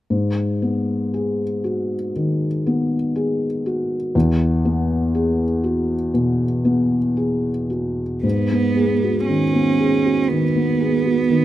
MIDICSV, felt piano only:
0, 0, Header, 1, 2, 480
1, 0, Start_track
1, 0, Key_signature, 5, "minor"
1, 0, Tempo, 1022147
1, 48, Time_signature, 4, 2, 24, 8
1, 1008, Tempo, 1000000
1, 2928, Tempo, 1043478
1, 4368, Tempo, 1010101
1, 5400, End_track
2, 0, Start_track
2, 0, Title_t, "Felt piano"
2, 0, Program_c, 0, 0
2, 48, Note_on_c, 0, 44, 38
2, 135, Control_c, 0, 64, 127
2, 292, Note_on_c, 0, 59, 30
2, 534, Note_on_c, 0, 68, 33
2, 674, Note_off_c, 0, 59, 0
2, 770, Note_on_c, 0, 66, 28
2, 914, Note_off_c, 0, 68, 0
2, 989, Note_off_c, 0, 44, 0
2, 1015, Note_on_c, 0, 51, 33
2, 1154, Note_off_c, 0, 66, 0
2, 1257, Note_on_c, 0, 59, 35
2, 1397, Note_off_c, 0, 51, 0
2, 1492, Note_on_c, 0, 68, 38
2, 1635, Note_off_c, 0, 59, 0
2, 1734, Note_on_c, 0, 66, 36
2, 1872, Note_off_c, 0, 68, 0
2, 1970, Note_off_c, 0, 66, 0
2, 1971, Note_on_c, 0, 40, 53
2, 1976, Control_c, 0, 64, 0
2, 2041, Control_c, 0, 64, 127
2, 2211, Note_on_c, 0, 59, 39
2, 2448, Note_on_c, 0, 68, 41
2, 2592, Note_off_c, 0, 59, 0
2, 2684, Note_on_c, 0, 66, 37
2, 2831, Note_off_c, 0, 68, 0
2, 2910, Note_off_c, 0, 40, 0
2, 2925, Note_on_c, 0, 47, 36
2, 3067, Note_off_c, 0, 66, 0
2, 3158, Note_on_c, 0, 59, 35
2, 3304, Note_off_c, 0, 47, 0
2, 3398, Note_on_c, 0, 68, 32
2, 3546, Note_off_c, 0, 59, 0
2, 3642, Note_on_c, 0, 66, 26
2, 3794, Note_off_c, 0, 68, 0
2, 3888, Note_on_c, 0, 44, 42
2, 3890, Note_off_c, 0, 66, 0
2, 3900, Control_c, 0, 64, 0
2, 3988, Control_c, 0, 64, 127
2, 4017, Note_on_c, 0, 59, 28
2, 4131, Note_on_c, 0, 68, 32
2, 4205, Note_off_c, 0, 59, 0
2, 4257, Note_on_c, 0, 66, 29
2, 4320, Note_off_c, 0, 68, 0
2, 4371, Note_on_c, 0, 51, 30
2, 4444, Note_off_c, 0, 66, 0
2, 4493, Note_on_c, 0, 59, 28
2, 4562, Note_off_c, 0, 51, 0
2, 4612, Note_on_c, 0, 68, 31
2, 4683, Note_off_c, 0, 59, 0
2, 4736, Note_on_c, 0, 66, 30
2, 4802, Note_off_c, 0, 68, 0
2, 4827, Note_off_c, 0, 44, 0
2, 4857, Note_on_c, 0, 51, 32
2, 4925, Note_off_c, 0, 66, 0
2, 4974, Note_on_c, 0, 59, 30
2, 5045, Note_off_c, 0, 51, 0
2, 5094, Note_on_c, 0, 68, 30
2, 5164, Note_off_c, 0, 59, 0
2, 5212, Note_on_c, 0, 66, 32
2, 5283, Note_off_c, 0, 68, 0
2, 5329, Note_on_c, 0, 51, 31
2, 5400, Note_off_c, 0, 51, 0
2, 5400, Note_off_c, 0, 66, 0
2, 5400, End_track
0, 0, End_of_file